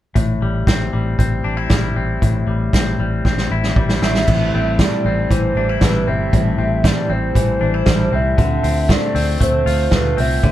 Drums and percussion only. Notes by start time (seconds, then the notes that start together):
0.16 kick, closed hi-hat
0.67 kick, snare, closed hi-hat
1.19 kick, closed hi-hat
1.70 kick, snare, closed hi-hat
2.22 kick, closed hi-hat
2.73 kick, snare, closed hi-hat
3.25 kick, snare
3.38 snare
3.64 snare
3.76 kick
3.89 snare
4.02 snare
4.15 snare
4.28 kick, crash
4.79 kick, snare, closed hi-hat
5.31 kick, closed hi-hat
5.81 kick, snare, closed hi-hat
6.33 kick, closed hi-hat
6.84 kick, snare, closed hi-hat
7.35 kick, closed hi-hat
7.86 kick, snare, closed hi-hat
8.38 kick, closed hi-hat
8.64 open hi-hat
8.89 kick, snare, closed hi-hat
9.15 open hi-hat
9.41 kick, closed hi-hat
9.67 open hi-hat
9.91 kick, snare, closed hi-hat
10.18 open hi-hat
10.43 kick, closed hi-hat